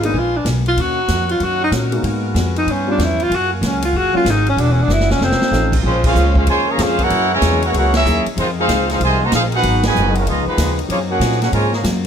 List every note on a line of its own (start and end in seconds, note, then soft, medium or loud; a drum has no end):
0.00 0.13 G#1 medium
0.00 0.13 G#3 medium
0.00 0.13 A#3 medium
0.00 0.13 B3 medium
0.00 0.14 D4 medium
0.00 0.13 D#4 medium
0.00 0.13 G#4 medium
0.00 0.61 B4 medium
0.00 0.14 F5 medium
0.00 ride medium
0.04 0.20 D#4 medium
0.04 0.14 G#4 medium
0.13 0.44 A#1 medium
0.13 0.35 A#2 soft
0.13 0.36 G#3 soft
0.13 0.36 B3 soft
0.13 0.61 D4 medium
0.13 0.36 D4 soft
0.13 0.61 A#4 medium
0.13 0.61 G#5 medium
0.18 0.38 F4 medium
0.36 0.47 D4 medium
0.45 0.76 B1 loud
0.45 0.67 A#2 medium
0.45 0.67 G#3 medium
0.45 0.68 B3 medium
0.45 0.68 D4 medium
0.45 snare medium
0.45 hi-hat pedal medium
0.45 ride medium
0.66 0.82 F4 medium
0.66 ride soft
0.76 1.08 D#2 medium
0.76 0.98 D#3 soft
0.76 0.99 A#3 soft
0.76 0.99 C#4 medium
0.76 2.03 D#4 medium
0.76 1.00 F#4 soft
0.76 2.66 A#4 medium
0.76 2.03 C#5 medium
0.76 2.04 F#5 medium
0.76 ride medium
0.81 1.30 F#4 loud
1.08 1.39 F2 medium
1.08 1.30 D#3 medium
1.08 1.30 A#3 medium
1.08 1.31 C#4 medium
1.08 1.31 F#4 medium
1.08 snare medium
1.08 hi-hat pedal medium
1.08 ride medium
1.29 1.45 F4 medium
1.29 ride soft
1.40 1.70 F#2 medium
1.40 1.62 D#3 soft
1.40 1.62 A#3 medium
1.40 1.63 C#4 medium
1.40 1.63 F#4 medium
1.40 1.62 F#4 loud
1.40 ride medium
1.64 1.70 D#4 loud
1.71 2.02 A#2 loud
1.71 1.93 D#3 medium
1.71 1.94 A#3 medium
1.71 1.94 C#4 medium
1.71 1.94 F#4 medium
1.71 snare medium
1.71 hi-hat pedal medium
1.71 ride medium
1.92 2.33 G#3 medium
1.92 2.33 A#3 medium
1.92 2.33 B3 medium
1.92 2.34 D#4 medium
1.92 2.34 F#4 medium
1.92 ride medium
2.03 2.34 G#2 medium
2.03 2.25 G#3 medium
2.03 2.25 B3 medium
2.03 2.26 F#4 medium
2.03 2.68 F#4 medium
2.03 2.26 A#4 medium
2.03 3.30 B4 medium
2.03 2.67 G#5 medium
2.03 ride medium
2.34 2.66 F2 medium
2.34 2.56 G#3 medium
2.34 2.57 B3 medium
2.34 2.57 F#4 medium
2.34 2.57 A#4 medium
2.34 snare medium
2.34 hi-hat pedal medium
2.34 ride medium
2.56 2.73 D#4 medium
2.56 ride medium
2.66 2.98 G2 medium
2.66 2.88 G2 medium
2.66 2.89 F3 medium
2.66 2.89 B3 medium
2.66 2.90 C#4 medium
2.66 3.30 F4 medium
2.66 3.31 C#5 medium
2.66 3.31 G5 medium
2.66 ride medium
2.72 2.90 C#4 medium
2.87 2.98 G3 medium
2.87 2.98 B3 medium
2.87 2.98 C#4 medium
2.87 2.98 D4 medium
2.87 3.05 D4 medium
2.87 2.98 F4 medium
2.98 3.29 E2 loud
2.98 3.20 G2 medium
2.98 3.21 F3 medium
2.98 3.21 B3 medium
2.98 3.21 C#4 medium
2.98 snare medium
2.98 hi-hat pedal medium
2.98 ride medium
3.04 3.24 E4 medium
3.20 3.37 F4 loud
3.20 ride medium
3.30 3.61 F#2 medium
3.30 3.52 F#3 soft
3.30 3.52 A#3 soft
3.30 3.53 F4 soft
3.30 4.57 F#4 medium
3.30 3.53 G#4 soft
3.30 4.57 A#4 medium
3.30 4.57 F5 medium
3.30 4.57 G#5 medium
3.30 ride medium
3.35 3.53 F#4 loud
3.53 3.68 A#3 medium
3.61 3.93 C#2 loud
3.61 3.84 F#3 medium
3.61 3.84 A#3 medium
3.61 3.84 F4 medium
3.61 3.84 G#4 medium
3.61 snare medium
3.61 hi-hat pedal medium
3.61 ride medium
3.66 3.84 C#4 medium
3.82 3.99 F4 medium
3.82 ride medium
3.93 4.12 F#1 medium
3.93 4.15 F#3 medium
3.93 4.16 A#3 medium
3.93 4.16 F4 medium
3.93 4.17 G#4 medium
3.97 4.16 F#4 loud
4.14 4.24 F#3 medium
4.14 4.25 G#3 medium
4.14 4.25 A#3 medium
4.14 4.25 C#4 medium
4.14 4.25 F4 medium
4.14 4.31 F4 loud
4.14 muted upright bass stroke soft
4.25 4.56 G#1 loud
4.25 4.47 F#3 medium
4.25 4.47 A#3 medium
4.25 4.48 F4 medium
4.25 4.48 G#4 medium
4.25 snare medium
4.25 hi-hat pedal medium
4.25 ride medium
4.30 4.48 D#4 medium
4.46 4.62 C#4 loud
4.46 ride medium
4.56 4.87 E1 medium
4.56 4.79 E3 soft
4.56 4.79 G#3 soft
4.56 4.80 D4 medium
4.56 5.20 E4 medium
4.56 4.80 F#4 medium
4.56 5.20 G#4 medium
4.56 5.20 D5 medium
4.56 5.20 F#5 medium
4.56 ride medium
4.61 4.73 D4 medium
4.72 4.84 C#4 medium
4.83 4.94 D4 medium
4.88 5.18 F#1 loud
4.88 5.10 E3 medium
4.88 5.11 G#3 medium
4.88 5.11 D4 medium
4.88 5.11 F#4 medium
4.88 snare medium
4.88 hi-hat pedal medium
4.93 5.11 E4 loud
5.00 snare medium
5.10 5.25 C#4 medium
5.10 snare medium
5.19 5.39 F1 medium
5.19 5.41 F2 soft
5.19 5.42 D#3 medium
5.19 5.42 A3 medium
5.19 5.43 C#4 medium
5.19 5.84 D#4 medium
5.19 5.83 A4 medium
5.19 5.83 C5 medium
5.19 5.83 F5 medium
5.19 snare medium
5.24 5.80 C4 loud
5.31 snare medium
5.40 muted upright bass stroke soft
5.40 snare loud
5.51 5.82 A1 loud
5.51 5.73 F2 medium
5.51 5.74 D#3 medium
5.51 5.70 F3 medium
5.51 5.70 A3 medium
5.51 5.74 A3 medium
5.51 5.71 C4 medium
5.51 5.71 C#4 medium
5.51 5.74 C#4 medium
5.51 5.71 D#4 medium
5.51 snare medium
5.51 hi-hat pedal medium
5.72 kick medium
5.72 crash medium
5.82 6.14 A#1 loud
5.82 7.09 C#3 medium
5.82 6.03 F3 medium
5.82 10.22 G#3 medium
5.82 6.03 G#3 medium
5.82 6.04 A#3 medium
5.82 8.21 A#3 medium
5.82 6.03 C4 medium
5.82 6.05 C#4 soft
5.82 7.09 C#4 medium
5.82 6.04 C#4 medium
5.82 6.04 F4 medium
5.82 6.05 G#4 medium
5.82 6.05 C5 medium
5.82 6.04 C5 loud
5.86 6.04 G#3 medium
6.04 6.34 G#3 medium
6.04 6.34 C#4 medium
6.04 6.35 C#4 medium
6.04 6.34 F4 loud
6.04 6.35 G#4 medium
6.04 6.35 C5 medium
6.04 6.35 F5 loud
6.04 kick loud
6.04 crash medium
6.15 6.46 C#2 loud
6.15 6.36 A#3 medium
6.15 6.37 C#4 medium
6.15 6.37 G#4 medium
6.15 6.38 C5 medium
6.15 hi-hat pedal medium
6.35 6.47 G#3 medium
6.35 6.47 C#4 medium
6.35 6.48 C#4 medium
6.35 6.47 F4 medium
6.35 6.48 G#4 medium
6.35 6.48 C5 medium
6.35 6.48 F5 loud
6.35 kick medium
6.46 6.77 D#2 medium
6.46 6.67 C#3 medium
6.46 6.67 F3 medium
6.46 6.67 G#3 loud
6.46 6.68 A#3 soft
6.46 6.69 C#4 soft
6.46 6.67 F4 loud
6.46 6.69 G#4 soft
6.46 6.70 C5 medium
6.46 6.67 C5 loud
6.46 6.67 C#5 medium
6.46 6.67 G#5 loud
6.46 ride medium
6.68 6.79 C#3 medium
6.68 6.79 F3 medium
6.68 6.80 A#3 medium
6.68 6.80 G#4 medium
6.68 6.80 C#5 medium
6.68 6.80 F5 medium
6.68 6.80 A#5 loud
6.78 7.09 F2 loud
6.78 6.99 G#3 medium
6.78 7.00 A#3 medium
6.78 7.00 C#4 medium
6.78 6.98 C#4 medium
6.78 6.99 F4 medium
6.78 7.01 G#4 medium
6.78 7.00 G#4 medium
6.78 7.01 C5 medium
6.78 snare medium
6.78 hi-hat pedal medium
6.78 ride medium
6.82 7.01 C#4 medium
6.82 7.00 C5 medium
6.82 7.01 F5 loud
6.99 7.31 A#3 medium
6.99 7.31 C#4 medium
6.99 7.31 F#4 medium
6.99 7.32 C#5 loud
6.99 7.32 F#5 loud
6.99 kick medium
6.99 ride medium
7.03 7.32 E4 loud
7.03 7.32 A#4 loud
7.09 7.41 F#2 medium
7.09 8.21 E3 medium
7.09 7.31 F#3 soft
7.09 7.32 A#3 medium
7.09 7.32 E4 medium
7.09 8.21 F#4 medium
7.09 7.32 G#4 medium
7.09 ride medium
7.32 7.61 C#3 loud
7.32 7.61 E3 medium
7.32 7.60 G#3 loud
7.32 7.62 E4 loud
7.32 7.62 A#4 loud
7.32 7.62 C#5 loud
7.32 7.62 G#5 loud
7.42 7.72 E2 loud
7.42 7.63 F#3 medium
7.42 7.63 A#3 medium
7.42 7.64 E4 medium
7.42 7.64 G#4 medium
7.42 snare medium
7.42 hi-hat pedal medium
7.42 ride medium
7.62 7.74 A#3 medium
7.62 7.74 C#4 medium
7.62 7.75 E4 medium
7.62 7.74 F#4 medium
7.62 7.74 A#4 medium
7.62 7.75 C#5 medium
7.62 7.75 F#5 loud
7.62 ride medium
7.73 8.04 C#2 medium
7.73 7.94 F#3 medium
7.73 7.95 A#3 medium
7.73 7.95 E4 medium
7.73 7.94 E4 medium
7.73 7.95 G#4 medium
7.73 ride medium
7.77 7.94 A#3 medium
7.77 7.94 C#4 medium
7.77 7.95 F#4 loud
7.77 7.94 A#4 medium
7.77 7.94 C#5 medium
7.77 7.94 F#5 loud
7.94 8.25 A#3 medium
7.94 8.25 C#4 medium
7.94 8.25 E4 medium
7.94 8.25 G#4 medium
7.94 8.25 A#4 medium
7.94 8.25 E5 loud
7.94 snare loud
7.94 ride medium
8.05 8.24 D#2 loud
8.05 8.26 F#3 medium
8.05 8.27 A#3 medium
8.05 8.27 E4 medium
8.05 8.27 G#4 medium
8.05 hi-hat pedal medium
8.25 muted upright bass stroke soft
8.25 ride medium
8.36 8.67 F2 medium
8.36 10.88 D#3 medium
8.36 8.47 D#3 medium
8.36 8.57 F3 soft
8.36 8.48 G#3 medium
8.36 8.58 C4 soft
8.36 9.62 C4 medium
8.36 8.47 C4 medium
8.36 8.58 D#4 soft
8.36 8.48 D#4 medium
8.36 9.63 F4 medium
8.36 8.59 G#4 medium
8.36 8.48 C5 medium
8.36 ride medium
8.40 8.48 F4 medium
8.60 8.88 G#3 medium
8.60 8.88 C4 medium
8.60 8.88 D#4 medium
8.60 8.88 F4 medium
8.60 8.88 G#4 medium
8.60 8.88 C5 medium
8.60 8.88 F5 loud
8.68 8.99 C#2 loud
8.68 8.89 F3 medium
8.68 8.90 C4 medium
8.68 8.90 D#4 medium
8.68 8.90 G#4 medium
8.68 snare medium
8.68 hi-hat pedal medium
8.68 ride medium
8.89 9.01 G#3 medium
8.89 9.01 C4 medium
8.89 9.01 D#4 medium
8.89 9.01 F4 medium
8.89 9.01 G#4 medium
8.89 9.01 C5 medium
8.89 9.01 F5 medium
8.89 snare soft
8.89 ride medium
8.99 9.31 C2 medium
8.99 9.21 F3 medium
8.99 9.21 C4 medium
8.99 9.22 D#4 medium
8.99 9.22 G#4 medium
8.99 ride medium
9.03 9.21 C3 medium
9.03 9.20 D#3 medium
9.03 9.20 G#3 medium
9.03 9.21 F4 medium
9.03 9.21 C5 medium
9.03 9.21 D#5 medium
9.03 9.21 G#5 loud
9.24 9.34 A#3 medium
9.24 9.33 F#4 medium
9.24 9.33 C5 medium
9.24 9.34 D#5 medium
9.24 9.34 A#5 loud
9.32 9.62 A#1 loud
9.32 9.53 F3 medium
9.32 9.43 G#3 medium
9.32 9.53 C4 medium
9.32 9.53 D#4 medium
9.32 9.44 D#4 medium
9.32 9.44 F4 medium
9.32 9.54 G#4 medium
9.32 9.44 G#4 medium
9.32 9.44 F5 medium
9.32 snare medium
9.32 hi-hat pedal medium
9.32 ride medium
9.36 9.44 C4 medium
9.36 9.44 C5 medium
9.52 9.83 B3 medium
9.52 9.83 D#4 medium
9.52 9.83 F#4 medium
9.52 9.83 G#4 loud
9.52 9.83 B4 loud
9.52 9.83 F#5 loud
9.52 ride medium
9.62 9.94 G#1 loud
9.62 9.84 G#2 soft
9.62 9.84 F#3 medium
9.62 10.25 B3 medium
9.62 9.85 B3 medium
9.62 9.85 D#4 medium
9.62 10.26 F#4 medium
9.62 ride medium
9.83 10.14 B2 medium
9.83 10.14 D#3 medium
9.83 10.14 G#3 medium
9.83 10.14 F#4 medium
9.83 10.15 B4 medium
9.83 10.14 D#5 medium
9.83 10.14 G#5 loud
9.83 snare loud
9.83 ride medium
9.94 10.25 F#1 loud
9.94 10.16 G#2 medium
9.94 10.16 F#3 medium
9.94 10.16 B3 medium
9.94 10.17 D#4 medium
9.94 hi-hat pedal medium
10.15 10.27 C#4 medium
10.15 10.27 F4 medium
10.15 10.27 F#4 medium
10.15 10.27 A#4 medium
10.15 10.27 F5 medium
10.15 ride medium
10.25 10.45 C#2 medium
10.25 10.47 C#3 medium
10.25 10.48 F3 medium
10.25 10.46 G#3 medium
10.25 10.89 B3 medium
10.25 10.48 B3 soft
10.25 10.46 B3 medium
10.25 10.89 C#4 medium
10.25 12.07 D#4 medium
10.25 10.46 D#4 medium
10.25 10.48 D#4 medium
10.25 10.46 F4 medium
10.25 ride medium
10.29 10.47 G#4 medium
10.29 10.47 D#5 medium
10.46 10.77 F3 medium
10.46 10.77 G#3 medium
10.46 10.77 B3 medium
10.46 10.77 D#4 medium
10.46 10.77 F4 medium
10.46 10.77 B4 loud
10.46 muted upright bass stroke soft
10.57 10.88 D#2 loud
10.57 10.79 C#3 medium
10.57 10.79 F3 medium
10.57 10.79 B3 medium
10.57 10.80 D#4 medium
10.57 snare medium
10.57 hi-hat pedal medium
10.57 ride medium
10.79 ride medium
10.88 11.19 F#2 medium
10.88 12.07 C#3 medium
10.88 10.99 F3 medium
10.88 11.10 F#3 soft
10.88 12.07 G#3 medium
10.88 12.07 A#3 medium
10.88 11.11 A#3 soft
10.88 10.99 A#3 medium
10.88 11.00 A#3 medium
10.88 11.11 C4 soft
10.88 10.99 C#4 medium
10.88 11.11 F4 soft
10.88 11.00 F4 medium
10.88 10.99 G#4 medium
10.88 10.99 C#5 medium
10.88 ride medium
11.10 11.39 A#3 medium
11.10 11.40 C#4 medium
11.10 11.39 F#4 medium
11.10 11.40 G#4 medium
11.10 11.40 A#4 medium
11.10 11.40 F#5 loud
11.19 11.51 A#2 loud
11.19 11.42 F#3 medium
11.19 11.42 A#3 medium
11.19 11.42 C4 medium
11.19 11.43 F4 medium
11.19 snare medium
11.19 hi-hat pedal medium
11.19 ride medium
11.31 snare soft
11.42 11.52 A#3 medium
11.42 11.52 C#4 medium
11.42 11.53 C#4 medium
11.42 11.52 F#4 medium
11.42 11.53 G#4 medium
11.42 11.53 A#4 medium
11.42 11.53 F#5 medium
11.42 snare medium
11.42 ride medium
11.52 11.83 G#2 medium
11.52 11.71 C#3 medium
11.52 11.71 F3 medium
11.52 11.74 F#3 soft
11.52 11.71 G#3 medium
11.52 11.74 A#3 medium
11.52 11.74 C4 medium
11.52 11.72 F4 medium
11.52 11.75 F4 medium
11.52 11.72 A#4 medium
11.52 11.72 C#5 medium
11.52 11.72 G#5 medium
11.52 ride medium
11.71 11.83 C#3 medium
11.71 11.83 F3 medium
11.71 11.83 A#3 medium
11.71 11.84 G#4 medium
11.71 11.85 C#5 medium
11.71 11.84 F5 medium
11.71 11.85 A#5 medium
11.71 snare soft
11.83 12.07 F#2 loud
11.83 12.05 F#3 medium
11.83 12.05 A#3 medium
11.83 12.05 C4 medium
11.83 12.06 F4 medium
11.83 snare medium
11.83 hi-hat pedal medium
11.83 ride medium